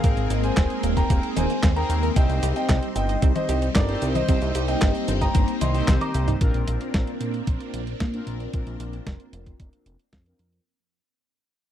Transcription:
Already playing: G#3 A#3 C4 G#4 F5
0.04 G#1 A#3 C4 D#4 G#4 A#4, kick, closed hi-hat, cabasa
0.17 G#1, closed hi-hat, cabasa
0.30 G#1 D#4, closed hi-hat, cabasa
0.44 A#3 C5 G#5, closed hi-hat, cabasa
0.57 D#1 C4, kick, snare, clap, closed hi-hat, cabasa
0.70 closed hi-hat
0.83 D#1 A#3, closed hi-hat, cabasa
0.97 A#4 G5 A#5, kick, closed hi-hat, cabasa
1.10 D#1 A#3, kick, closed hi-hat, cabasa
1.23 closed hi-hat
1.36 D#1 D#4 C5 G#5, closed hi-hat, high tom, cabasa
1.50 A#3, closed hi-hat, cabasa
1.63 D#2 C4, kick, snare, clap, closed hi-hat, cabasa
1.76 C4 D#4 G#4 A#4 G5 A#5, closed hi-hat
1.90 D#2 A#3, closed hi-hat, cabasa
2.03 A#4, closed hi-hat, cabasa
2.16 C2 G3 C4 D#4 G4 C5 D#5 G5, kick, closed hi-hat, cabasa
2.29 C2, closed hi-hat, cabasa
2.43 C2 G4, closed hi-hat, cabasa
2.56 C4 D#5 G5, closed hi-hat, cabasa
2.69 C2 D#4, kick, snare, clap, closed hi-hat, cabasa
2.83 closed hi-hat
2.96 G1 C4 D#5 G5, closed hi-hat, cabasa
3.09 D#5, closed hi-hat, cabasa
3.22 C2 C4, kick, closed hi-hat, cabasa
3.36 C5 D#5, closed hi-hat, high tom
3.49 C2 G4, closed hi-hat, cabasa
3.62 C4, closed hi-hat, cabasa
3.75 G1 D#4 A#4 D5, kick, snare, clap, closed hi-hat, cabasa
3.89 C4 D#4 G4 C5, closed hi-hat
4.02 C2 C4, closed hi-hat, cabasa
4.15 C5 D#5, closed hi-hat, high tom, cabasa
4.28 C2 A#3 C4 D#4 G4 C5, kick, closed hi-hat, cabasa
4.42 C2, closed hi-hat, cabasa
4.55 C2 G4, closed hi-hat, cabasa
4.68 C4 D#5 G5, closed hi-hat, cabasa
4.82 G1 D#4, kick, snare, clap, closed hi-hat, cabasa
4.95 closed hi-hat, cabasa
5.08 G1 C4, closed hi-hat, high tom, cabasa
5.21 D#5 G5 A#5, kick, closed hi-hat, cabasa
5.35 G1 C4, kick, closed hi-hat, cabasa
5.48 closed hi-hat, cabasa
5.61 C2 D#5 G5 C6, closed hi-hat, high tom, cabasa
5.75 C4 D#4 G4 C5, closed hi-hat, cabasa
5.88 C2 C4, kick, snare, clap, closed hi-hat, high tom, cabasa
6.01 D#5 A#5 D6, closed hi-hat, high tom
6.14 C2 G4, closed hi-hat, cabasa
6.28 D#4, closed hi-hat, mid tom, cabasa
6.41 A#1 A#3 C4 D4 F4 A#4, kick, closed hi-hat
6.54 A#1, closed hi-hat
6.68 A#1, closed hi-hat
6.81 closed hi-hat
6.94 A#1, kick, snare, closed hi-hat
7.07 closed hi-hat
7.21 A#2, closed hi-hat
7.34 closed hi-hat
7.47 A#1, kick, closed hi-hat
7.60 closed hi-hat
7.74 A#1, closed hi-hat
7.87 closed hi-hat
8.00 A#2, kick, snare, closed hi-hat
8.14 C4 D4 F4 A#4, closed hi-hat
8.27 A#1, closed hi-hat
8.40 closed hi-hat
8.53 A#1 C4 D4 F4 A#4, kick, closed hi-hat
8.67 A#1, closed hi-hat
8.80 A#1, closed hi-hat
8.93 closed hi-hat
9.07 F1, kick, snare, closed hi-hat
9.20 closed hi-hat
9.33 F1, closed hi-hat
9.46 kick, closed hi-hat
9.60 F1, kick, closed hi-hat
9.73 closed hi-hat
9.86 F1, closed hi-hat
9.99 closed hi-hat
10.13 F2, kick, snare, closed hi-hat
10.26 C4 D4 F4 A#4, closed hi-hat
10.39 F2, closed hi-hat
10.53 closed hi-hat

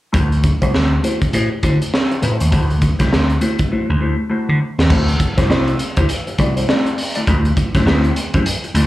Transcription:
0.13 D2 A3 E4 F#4 C5, kick, closed hi-hat
0.31 muted clean electric guitar stroke, closed hi-hat
0.44 muted clean electric guitar stroke, kick, closed hi-hat
0.62 C2 A3 E4 F#4 C5, kick, closed hi-hat
0.74 D2, muted clean electric guitar stroke, snare
1.03 A3 E4 F#4 C5, closed hi-hat
1.22 muted clean electric guitar stroke, kick, closed hi-hat
1.33 A2 A3 E4 F#4 C5, closed hi-hat
1.52 muted clean electric guitar stroke
1.63 D3 A3 E4 F#4 C5, kick, closed hi-hat
1.82 muted clean electric guitar stroke, closed hi-hat
1.94 snare
2.11 muted clean electric guitar stroke, closed hi-hat
2.22 A2 A3 E4 F#4 C5, closed hi-hat
2.39 D#2, muted clean electric guitar stroke, closed hi-hat
2.51 D2 A3 E4 F#4 C5, kick, closed hi-hat
2.70 muted clean electric guitar stroke, closed hi-hat
2.82 muted clean electric guitar stroke, kick, closed hi-hat
2.99 C2 A3 E4 F#4 C5, kick, snare, closed hi-hat
3.11 D2, muted clean electric guitar stroke, snare
3.30 closed hi-hat
3.41 A3 E4 F#4 C5, closed hi-hat
3.59 muted clean electric guitar stroke, kick, closed hi-hat
3.72 A3 E4 F#4 C5, muted slap bass stroke
3.89 D2, muted clean electric guitar stroke
4.00 A3 E4 F#4 C5
4.19 muted clean electric guitar stroke
4.30 A3 E4 F#4 C5
4.49 D3
4.61 muted clean electric guitar stroke
4.78 D#2, muted clean electric guitar stroke, snare
4.90 D2 A3 E4 F#4 C5, kick, crash
5.08 muted clean electric guitar stroke, closed hi-hat
5.20 muted clean electric guitar stroke, kick, closed hi-hat
5.37 C2 A3 E4 F#4 C5, kick, snare, closed hi-hat
5.49 C2 A3 E4 F#4 C5, snare
5.68 closed hi-hat
5.79 muted clean electric guitar stroke, closed hi-hat
5.97 D2 A3 E4 F#4 C5, kick, closed hi-hat
6.09 muted clean electric guitar stroke, closed hi-hat
6.27 muted clean electric guitar stroke, closed hi-hat
6.38 C2 A3 E4 F#4 D5, kick, closed hi-hat
6.56 A3 E4 F#4 C5, closed hi-hat
6.68 A3 E4 F#4 D5, snare
6.86 closed hi-hat
6.97 muted clean electric guitar stroke, open hi-hat
7.15 A3 E4 F#4 D5, closed hi-hat
7.27 D2 A3 E4 F#4 C5, kick, closed hi-hat
7.45 muted clean electric guitar stroke, closed hi-hat
7.57 muted clean electric guitar stroke, kick, closed hi-hat
7.75 F#2 A3 E4 F#4 C5, kick, snare, closed hi-hat
7.86 D2 A3 E4 F#4 C5, snare
8.04 closed hi-hat
8.16 muted clean electric guitar stroke, closed hi-hat
8.34 F#2 A3 E4 F#4 C5, kick, closed hi-hat
8.46 muted clean electric guitar stroke, closed hi-hat
8.64 muted clean electric guitar stroke, closed hi-hat
8.74 D2 A3 E4 F#4 D5, closed hi-hat

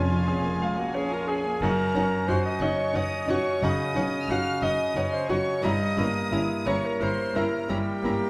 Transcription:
Already playing: F1 F2 C#4 F4 G#4 C#5 F5 G#5
0.11 F4
0.27 C#4 G#4
0.44 A#3
0.60 G#3 F5
0.77 A#3 F#4 F#5
0.94 C#4 G#4 C#5 G#5
1.11 F4 A#4 A#5
1.28 C#4 G#4 G#5
1.45 A#3
1.62 F#1 F#2 C#4 D#4 A#4 F#5 A#5
1.94 F#1 F#2 C#4 D#4 F#5
2.28 F#1 F#2 C#4 D#4 F#4 C5 F#5 C6
2.45 D#5 D#6
2.61 F#1 F#2 C#4 D#4 C#5 D#5 F#5 C#6
2.93 F#1 F#2 C#4 D#4 C#5 D#5 F#5 D#6
3.27 F#1 F#2 C#4 D#4 F#4 C#5 F#5 C#6
3.61 F#1 F#2 C#3 C#4 D#4 D#5 F#5 D#6
3.95 F#1 F#2 C#4 D#4 F#5
4.27 F#1 F#2 C#4 D#4 F#4 F#5 F6
4.31 F5
4.61 F#1 F#2 C#4 D#4 D#5 F#5 D#6
4.95 F#1 F#2 C#4 D#4 C#5 F#5
5.12 C5 C6
5.29 F#1 F#2 C#4 D#4 F#4 C#5 F#5 C#6
5.63 G1 G2 C#4 E4 D#5 A#5 D#6
5.97 G1 G2 A#3 C#4 E4 A#5
6.32 G1 G2 C#4 E4 A#5
6.66 G1 G2 C#4 E4 C#5 A#5 C#6
6.84 A#4 A#5
7.00 G1 G2 C#4 E4 A#4 C5 A#5 C6
7.35 G1 G2 C#4 E4 A#4 A#5
7.69 G1 G2 G3 C#4 E4 G4 G5 A#5
8.03 G1 G2 A#3 C#4 E4 A#5

